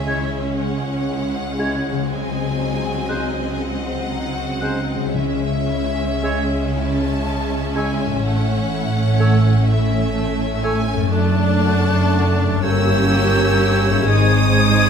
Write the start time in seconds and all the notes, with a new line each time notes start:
Already playing: C#2 C#3 G#3 C#4 E4 G#4 C#5 E5
0.07 G#3 E4 C#5 G#6
0.34 C#4
0.58 G#3 F#5
0.84 C#4
1.09 E4
1.33 G#4
1.58 G#3 E4 C#5 G#6
1.82 C#4
1.91 C#3
1.96 G#3
2.00 F#4
2.05 G#3 C5 D#5
2.09 F#3 C4 G#5
2.33 C4
2.58 D#4
2.84 F#4
3.09 G#3 D#4 C5 F#6
3.34 C4
3.53 G#5
3.59 G#3 F#5
3.84 C4
4.11 D#4
4.36 F#4
4.61 G#3 D#4 C5 F#6
4.87 C4
4.96 C#3
5.00 G#3
5.05 E4
5.09 G#3 C#5 E5
5.14 C#2 C#3 G#3 C#4 E5
5.40 C#4
5.67 E4
5.95 C#4
6.23 G#3 C#5 E6
6.49 C#4
6.75 E4 A5
7.02 C#4
7.26 G#3
7.51 C#4
7.74 G#3 E4 C#5 G#5 E6
7.99 C#4
8.06 A2
8.10 A3
8.15 E4
8.19 A1 A2 A3 C#5
8.24 A3 F#5
8.47 C#4
8.70 E4
8.95 C#4
9.20 A3 C#5 E6
9.44 C#4
9.68 E4 E5
9.91 C#4
10.16 A3
10.39 C#4
10.62 A3 E4 C#5 G#5 E6
10.87 C#4
10.94 F#2
10.98 A3
11.03 A4
11.07 F#1 A3 D4 D5 A5
11.12 F#2 A3 D4 F#6
11.35 D4
11.60 F#4
11.86 A4
12.12 F#4
12.38 D4
12.45 G2
12.50 C#4
12.54 A#4
12.59 A#3 C#4 C#5
12.63 G1 G2 A#3 C#4 G4 C#5 E6 G6
12.88 E4
13.13 G4
13.37 A#4
13.60 G4
13.85 E4
13.90 G#2
13.94 D#4
13.99 G#4
14.03 C5
14.08 G#1 G#2 G#3 C4 D#4 C5 D#6 G#6
14.31 C4
14.56 D#4
14.81 G#4